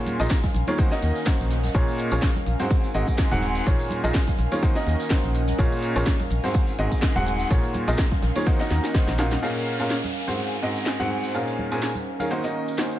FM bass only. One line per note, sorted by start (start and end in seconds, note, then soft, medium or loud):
0.20 0.27 A#1 medium
0.55 0.64 A#1 medium
1.03 1.12 D#2 medium
1.40 1.69 A#1 medium
1.75 1.84 A#1 loud
2.12 2.19 A#1 loud
2.47 2.56 A#1 loud
2.95 3.04 G#1 medium
3.32 3.61 D#1 loud
3.67 3.76 A#1 loud
4.04 4.11 A#1 loud
4.39 4.48 A#1 medium
4.87 4.96 D#2 medium
5.24 5.53 A#1 loud
5.59 5.68 A#1 loud
5.96 6.03 A#1 medium
6.31 6.40 A#1 loud
6.79 6.88 G#1 medium
7.16 7.45 D#1 medium
7.51 7.60 A#1 loud
7.88 7.95 A#1 loud
8.23 8.32 A#1 loud
8.71 8.80 D#2 medium
9.08 9.37 A#1 medium